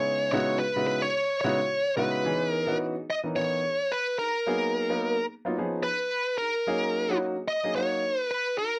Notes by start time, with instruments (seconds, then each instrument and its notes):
Already playing: grand piano C#3 G#3 B3 D#4 E4 G#4, lead electric guitar C#5
0.32 grand piano C#3 G#3 B3 D#4 E4 F#4, lead electric guitar C#5
0.59 grand piano E4 G#4, lead electric guitar B4
0.76 grand piano C#3 G#3 B3 D#4 E4 F#4
0.87 lead electric guitar B4
1.02 grand piano E4 G#4, lead electric guitar C#5
1.41 grand piano C#3 G#3 B3 D#4 E4 F#4, lead electric guitar C#5
1.60 grand piano E4 F#4
1.97 grand piano C#3 G#3 B3 D#4 E4 F#4, lead electric guitar B4
2.25 grand piano E3 B3 C#4 D#4 G#4
2.51 lead electric guitar A#4
2.67 grand piano E3 B3 C#4 D#4 F#4
2.96 grand piano D#4 G#4
3.10 lead electric guitar D#5
3.23 grand piano E3 B3 C#4 D#4 A#4
3.35 grand piano E3 B3 C#4 D#4 A#4, lead electric guitar C#5
3.64 grand piano D#4 G#4
3.92 lead electric guitar B4
4.19 grand piano D#4 G#4, lead electric guitar A#4
4.46 grand piano F#3 A#3 B3 D#4 G#4
4.89 grand piano F#3 A#3 B3 D#4 A#4
5.17 grand piano D#4 G#4
5.45 grand piano F#3 A#3 B3 D#4 F4
5.58 grand piano F3 B3 C#4 D#4 G#4
5.83 grand piano D#4 G#4, lead electric guitar B4
6.38 grand piano D#4 G#4, lead electric guitar A#4
6.66 grand piano F#3 A#3 C#4 D#4 G#4
7.09 grand piano F#3 A#3 C#4 D#4 F#4
7.37 grand piano D#4 G#4
7.48 lead electric guitar D#5
7.63 grand piano F#3 A#3 C#4 D#4 G#4
7.76 grand piano F#3 A#3 C#4 D#4 F#4, lead electric guitar C#5
8.05 grand piano D#4 A#4
8.21 lead electric guitar B4
8.31 lead electric guitar B4
8.58 grand piano D#4 F#4, lead electric guitar A#4